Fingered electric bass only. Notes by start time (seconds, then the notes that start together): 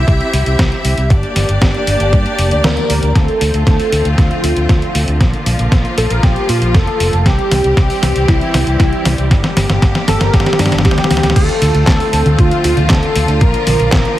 0.08 C2
0.33 C2
0.46 C2
0.85 C2
0.98 C2
1.10 G1
1.36 G1
1.49 G1
1.62 G1
1.87 G1
2.00 G1
2.13 G2
2.39 F1
2.51 D2
2.64 D2
2.90 D2
3.03 D2
3.15 D2
3.41 D2
3.54 D2
3.67 D2
3.92 D2
4.05 D2
4.18 D2
4.44 D2
4.56 D2
4.69 D2
4.95 D2
5.08 D2
5.21 A#1
5.46 A#1
5.59 A#1
5.72 A#1
5.98 A#1
6.10 A#1
6.23 A#1
6.49 A#2
6.62 A#1
6.75 F1
7.00 F1
7.13 F1
7.26 C2
7.51 C2
7.64 C2
7.77 C2
8.03 C2
8.16 C2
8.54 C2
8.67 C2
9.05 C2
9.18 C2
9.31 G1
9.57 G1
9.69 G1
9.82 G1
10.08 G1
10.21 G1
10.34 G1
10.59 G2
10.72 G1
10.85 D2
11.10 D2
11.23 D2
11.36 D2
11.62 D2
11.74 D2
11.87 D2
12.13 D2
12.26 D2
12.39 D2
12.64 D2
12.77 D2
12.90 D2
13.16 D2
13.28 D2
13.41 A#1
13.67 A#1
13.80 A#1
13.92 A#1